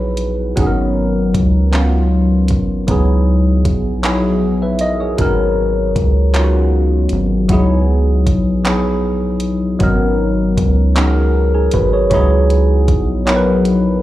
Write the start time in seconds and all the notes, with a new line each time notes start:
Already playing: A#1 F#3 B3 D#4 E4 G#4 B4
0.17 closed hi-hat
0.56 G#1 F#3 B3 C#4 D#4, kick, closed hi-hat
0.60 G#4
0.66 A#4
1.34 C#2, kick, closed hi-hat
1.71 F#3 B3 C#4 D#4, clap, closed hi-hat
1.76 F4
2.48 G#1, kick, closed hi-hat
2.87 C#2 F#3 B3 D#4 E4, kick, closed hi-hat
2.91 G#4
3.65 A#1, kick, closed hi-hat
4.02 F#3 B3 D#4 E4, clap, closed hi-hat
4.06 G#4
4.62 B4 E5
4.79 A#4 D#5, closed hi-hat
5.00 G#4 C#5
5.17 G#1 F#3 A#3 C#4 D#4, kick, closed hi-hat
5.22 B3 A#4
5.96 C#2, kick, closed hi-hat
6.33 F#3 B3 C#4 D#4, clap, closed hi-hat
6.37 F4
6.44 F#4
7.09 G#1, closed hi-hat
7.49 C#2 F#3 B3 D#4 E4, kick, closed hi-hat
7.53 G#4
8.27 A#1, kick, closed hi-hat
8.64 F#3 B3 D#4 E4, clap, closed hi-hat
8.68 G#4
9.40 closed hi-hat
9.79 G#1 F#3 B3 C#4 D#4, kick, closed hi-hat
9.83 A#4
10.57 C#2, kick, closed hi-hat
10.95 F#3 B3 C#4 D#4, clap, closed hi-hat
10.99 G#4
11.05 A#4
11.54 D#4 G#4
11.71 G#1 F#4 B4, kick, closed hi-hat
11.93 G#4 C#5
12.10 C#2 F#3 B3 D#4 E4, kick, closed hi-hat
12.14 G#4
12.50 closed hi-hat
12.88 A#1, kick, closed hi-hat
13.25 F#3 B3 D#4 E4, clap, closed hi-hat
13.30 A#4
13.36 B4
13.65 closed hi-hat